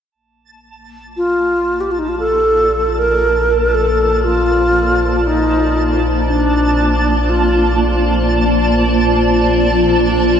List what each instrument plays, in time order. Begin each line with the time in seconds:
0.12 synth drone A#1, ambient pad A#3, synth texture A5
0.75 ambient pad D5
0.80 ambient pad F4
1.10 ambient pad A5
1.17 alto flute F4
1.81 alto flute G4
1.91 alto flute F4
1.99 alto flute D#4
2.09 alto flute F4, ambient pad C5
2.19 alto flute A4
2.98 alto flute A#4
3.74 alto flute A4
4.24 alto flute F4
5.27 alto flute D#4
6.28 alto flute D4
7.30 alto flute F4